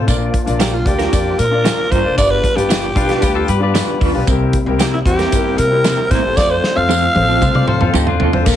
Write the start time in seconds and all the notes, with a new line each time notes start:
Already playing: F3
0.07 A#1 A#2 A#3 D4 F4 A#4 D5, kick, closed hi-hat, tambourine
0.34 kick, closed hi-hat
0.46 A#1 D4 F4 A#4 D5, closed hi-hat
0.60 D4 F4 G4 A#4, snare, closed hi-hat, tambourine
0.74 F4
0.85 D2 D4 F4 G4 A#4 D5, kick, closed hi-hat
0.99 D4 F4 A#4, snare, closed hi-hat
1.12 F2 D4 F4 A#4 D5, kick, closed hi-hat, tambourine
1.39 A#2 A#4, closed hi-hat
1.51 D4 F4 A#4 D5
1.64 D4 F4 A#4, snare, closed hi-hat, tambourine
1.91 G2 D4 F4 A#4 C5, kick, closed hi-hat
2.03 F1 D4 F4 A#4 D5
2.16 G1 G2 G3 B3 D4 F4 G4 B4 D5, kick, closed hi-hat, tambourine
2.31 B4
2.44 kick, closed hi-hat
2.55 G1 D4 F4 G4 B4, closed hi-hat
2.69 D4 F4 B4, snare, closed hi-hat, tambourine
2.95 B1 D4 F4 G4 B4, kick, closed hi-hat
3.09 D4 F4 B4, snare, closed hi-hat
3.20 D2 D4 F4 G4 B4, kick, closed hi-hat, tambourine
3.35 F4 A4
3.48 G2 G4 B4, closed hi-hat
3.60 D4 F4 G4 B4 D5
3.74 D4 F4 B4, snare, closed hi-hat, tambourine
4.01 D#2 D4 F4 B4, kick, open hi-hat
4.13 B1 D4 F4 G4 B4
4.26 C2 C3 A#3 C4 E4 G4 A#4, kick, closed hi-hat, tambourine
4.53 kick, closed hi-hat
4.66 C2 C4 E4 G4 A#4
4.79 C4 E4 G4 A#4, snare, closed hi-hat, tambourine
4.93 E4
5.05 E2 C4 E4 G4 C5, kick, closed hi-hat
5.19 C4 E4 A#4, snare, closed hi-hat
5.32 G1 C4 E4 G4 A#4, kick, closed hi-hat, tambourine
5.58 C3 A#4, closed hi-hat
5.71 C4 E4 G4 A#4
5.84 C4 E4 A#4, snare, closed hi-hat, tambourine
6.11 A2 C4 E4 A#4 C5, kick, snare, closed hi-hat
6.23 G1 C4 E4 G4 A4
6.36 F2 F3 A3 C4 F4 A4 C5 D5, kick, snare, tambourine
6.51 C5
6.64 snare
6.75 F2 C4 F4 A4 C5 F5
6.89 C4 F4 A4, high tom, tambourine
7.15 A1 C4 F4 A4 C5, high tom
7.28 C4 F4 A4
7.40 C2 C4 F4 A4 C5, kick, mid tom, tambourine
7.55 D5, mid tom
7.68 A4 C5, muted upright bass stroke, mid tom
7.79 F2 C4 F4 A4 C5, mid tom
7.94 D2 C4 D#4 F4 G4 A4, mid tom, tambourine
8.07 D4 F4, floor tom
8.20 D#2 C4 F4 A4, floor tom
8.32 F2 C4 F4 A4 C5, floor tom
8.44 A#1 A#2 F3 A#3 D4 F4 A4 A#4, kick, crash, tambourine